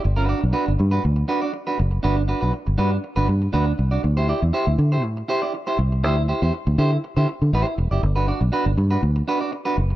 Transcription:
X:1
M:4/4
L:1/16
Q:1/4=120
K:G
V:1 name="Clean electric guitar"
z [DFB] [DFd] z [DFB] z2 [DFB] z2 [DFB] [DFd] z [DFB] z2 | [DFB] z [DFB] [DFB] z2 [DFB] z2 [DFB] z2 [DFB] z2 [DFd] | z [EGc] [EGd] z [EGc] z2 [EGc] z2 [EGc] [EGd] z [EGc] z2 | [EGc] z [EGc] [EGc] z2 [EGc] z2 [EGc] z2 [EGc]2 z [EGd] |
z [DFB] [DFd] z [DFB] z2 [DFB] z2 [DFB] [DFd] z [DFB] z2 |]
V:2 name="Fingered electric bass" clef=bass
G,,,3 B,,, z G,,, G,,2 D,,2 z4 F,,,2 | G,,,3 B,,, z G,,, G,,2 z G,,, G,,2 D,,2 C,,2 | D,,3 E,, z D,, D,2 A,,2 z4 C,,2 | D,,3 E,, z D,, D,2 z D, z D, A,,, z E,,, F,,, |
G,,,3 B,,, z G,,, G,,2 D,,2 z4 F,,,2 |]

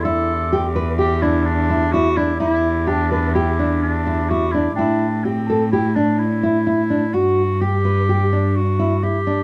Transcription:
X:1
M:5/4
L:1/8
Q:1/4=127
K:Em
V:1 name="Celesta"
z8 z2 | z2 a4- a z3 | g3 a4- a z2 | z8 z2 |]
V:2 name="Glass harmonica"
[Ged']8- [Ged']2- | [Ged']8- [Ged']2 | z8 z2 | z8 z2 |]
V:3 name="Clarinet"
A3 z G E D2 F E | E2 D D E2 D2 F E | D2 C2 E D E4 | F2 G4 F2 G2 |]
V:4 name="Nylon-string guitar"
E2 G B G D2 E E D | E2 G B G D2 E E D | E2 G A G D2 E E D | F2 G B G D2 E E D |]
V:5 name="Cello" clef=bass
E,,8- E,,2 | E,,8- E,,2 | A,,8- A,,2 | G,,8- G,,2 |]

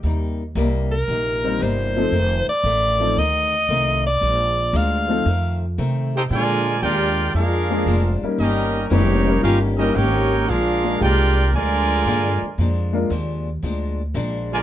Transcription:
X:1
M:4/4
L:1/8
Q:"Swing" 1/4=115
K:Fmix
V:1 name="Alto saxophone"
z3 B3 c2- | c d3 e3 d- | d2 f3 z3 | [K:Bb] z8 |
z8 | z8 | z8 |]
V:2 name="Trumpet section"
z8 | z8 | z6 z [EAcg] | [K:Bb] [FBd_a]2 [FBdg]2 [D_ABf]3 z |
[_DGBe]2 [B,EG_d]2 [DGBf] [DGBe] [EBdg]2 | [D_ABf]2 [FBdg]2 [FBd_a]4 | z6 z [FBd_a] |]
V:3 name="Upright piano"
z4 z [G,B,CEB] z [F,A,CEA] | z3 [F,A,CEA] z4 | z3 [F,A,CEA] z4 | [K:Bb] z4 z [F,_A,B,D_A] z [G,B,_DEB] |
z2 [_A,_CD=E_c] [G,B,_D_EB]2 [G,B,DEB] z2 | z [_A,B,DFB] z6 | z [_A,B,DFB] z6 |]
V:4 name="Trombone section"
z8 | z8 | z6 z G | [K:Bb] [D,F,_A,]2 [A,DG]2 [A,DF]3 z |
[G,B,E]2 [G,B,_D]2 F [G,B,E] [B,DG]2 | [_A,DF]2 [A,DG]2 [D,F,A,]4 | z6 z [D,F,_A,] |]
V:5 name="Steel-string acoustic guitar" clef=bass
[C,G,B,E] z [C,G,B,E] z [C,G,B,E] z [C,G,B,E] z | [F,,E,A,C] z [F,,E,A,C] z [F,,E,A,C] z [F,,E,A,C] z | [B,,F,_A,D] z [B,,F,A,D] z [F,,E,=A,C] z [F,,E,A,C] z | [K:Bb] [B,,F,_A,D] z [B,,F,A,D] z [B,,F,A,D] z [B,,F,A,D] z |
[E,B,_DG] z [E,B,DG] z [E,B,DG] z [E,B,DG] z | [B,,F,_A,D] z [B,,F,A,D] z [B,,F,A,D] z [B,,F,A,D] z | [B,,F,_A,D] z [B,,F,A,D] z [B,,F,A,D] z [B,,F,A,D] z |]
V:6 name="Upright bass" clef=bass
E,,2 C,,2 B,,,2 G,,,2 | F,,, z A,,,2 D,,2 C,,2 | B,,,2 D,,2 F,,2 C,2 | [K:Bb] B,,2 E,,2 F,,2 F,,, z |
G,,,2 F,,,2 G,,,2 _A,,,2 | B,,,2 C,,2 D,,2 G,, z | F,,2 E,,2 D,,2 B,,,2 |]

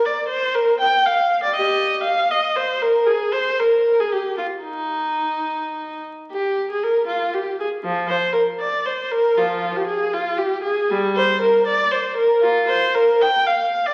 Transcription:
X:1
M:3/4
L:1/16
Q:1/4=118
K:Eb
V:1 name="Viola"
d2 c2 B2 g2 f3 d | [Ge]4 f2 e2 c2 B2 | A2 c2 B3 A G2 F2 | E8- E2 z2 |
G3 A B2 F2 G2 A2 | F,2 c2 B2 d2 c2 B2 | [F,F]3 G A2 F2 G2 A2 | G,2 c2 B2 d2 c2 B2 |
F2 c2 B2 g2 f3 d |]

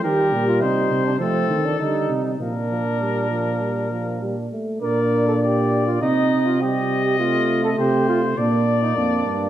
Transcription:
X:1
M:4/4
L:1/16
Q:1/4=101
K:Bb
V:1 name="Trumpet"
B4 c4 A6 z2 | B12- B2 z2 | d4 d4 e4 e4- | e4 c4 d8 |]
V:2 name="Flugelhorn"
G3 F E3 D C3 D E3 E | D12- D2 z2 | B3 A G3 F E3 F G3 G | F3 A G2 F2 D3 E D4 |]
V:3 name="Euphonium" clef=bass
G,8 A,2 z2 G,4 | F,2 F,2 G,2 F,2 G,2 F,2 G,2 A,2 | D8 C4 G,4 | A,8 B,4 B,4 |]
V:4 name="Tuba" clef=bass
E,2 B,,2 C,2 C,2 F,2 E,2 D,2 C,2 | B,,12- B,,2 z2 | B,,8 C,8- | C,4 C,4 B,,4 F,,2 G,,2 |]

